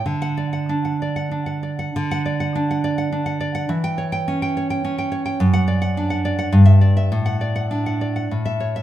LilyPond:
\new Staff \with { instrumentName = "Nylon-string guitar" } { \time 3/4 \key d \major \tempo 4 = 103 << { r16 fis''8 r2 r16 | r16 fis''8 r2 r16 | r16 g''8 r2 r16 | r16 fis''8 r4. e''8 r16 |
r16 fis''8 r4. e''8 r16 | } \\ { d8 d''16 fis''16 d'16 fis''16 d''16 fis''16 d'16 fis''16 d''16 fis''16 | d8 d''16 fis''16 d'16 fis''16 d''16 fis''16 d'16 fis''16 d''16 fis''16 | e8 cis''16 g''16 cis'16 g''16 cis''16 g''16 cis'16 g''16 cis''16 g''16 | fis,8 d''16 fis''16 d'16 fis''16 d''16 fis''16 g,8 d''16 e''16 |
a,8 d''16 fis''16 d'16 fis''16 d''16 fis''16 a,8 cis''16 e''16 | } >> }